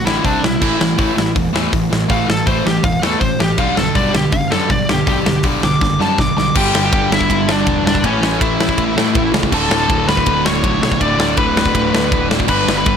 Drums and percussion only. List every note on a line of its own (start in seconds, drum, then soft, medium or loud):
0.07 snare loud
0.24 kick loud
0.24 open hi-hat medium
0.44 snare loud
0.62 kick loud
0.62 crash medium
0.81 snare loud
0.98 kick loud
0.98 open hi-hat medium
1.18 snare loud
1.36 kick loud
1.36 open hi-hat medium
1.56 snare loud
1.73 kick loud
1.73 open hi-hat medium
1.93 snare loud
2.10 kick loud
2.10 open hi-hat medium
2.30 snare loud
2.47 kick loud
2.47 open hi-hat medium
2.67 snare loud
2.84 kick loud
2.84 open hi-hat medium
3.03 snare loud
3.21 kick loud
3.21 open hi-hat medium
3.40 snare loud
3.58 kick loud
3.58 crash medium
3.77 snare loud
3.95 kick loud
3.95 open hi-hat medium
4.15 snare loud
4.32 kick loud
4.32 open hi-hat medium
4.52 snare loud
4.70 kick loud
4.70 open hi-hat medium
4.89 snare loud
5.07 kick loud
5.07 open hi-hat medium
5.26 snare loud
5.43 kick loud
5.43 open hi-hat medium
5.63 snare loud
5.81 kick loud
5.81 snare medium
6.01 snare medium
6.18 kick loud
6.18 snare medium
6.38 snare medium
6.55 kick loud
6.55 crash loud
6.75 snare loud
6.93 kick loud
6.93 ride medium
7.12 snare loud
7.21 kick loud
7.30 kick loud
7.30 ride medium
7.49 snare loud
7.67 kick loud
7.67 ride medium
7.87 snare loud
7.95 kick medium
8.04 kick medium
8.04 ride medium
8.23 snare loud
8.41 kick loud
8.41 ride medium
8.61 snare loud
8.69 kick medium
8.78 kick loud
8.78 ride medium
8.98 snare loud
9.15 kick loud
9.15 ride medium
9.34 snare loud
9.43 kick loud
9.52 kick loud
9.52 crash loud
9.71 snare loud
9.90 kick loud
9.90 ride medium
10.09 snare loud
10.17 kick medium
10.26 kick loud
10.26 ride medium
10.46 snare loud
10.64 kick loud
10.64 ride medium
10.83 snare loud
10.92 kick loud
11.01 kick loud
11.01 ride medium
11.20 snare loud
11.37 kick loud
11.37 ride medium
11.57 snare loud
11.66 kick loud
11.75 kick loud
11.75 ride medium
11.95 snare loud
12.12 kick loud
12.12 ride medium
12.31 snare loud
12.40 kick medium
12.48 kick medium
12.48 crash loud
12.68 snare loud
12.86 kick loud
12.86 ride medium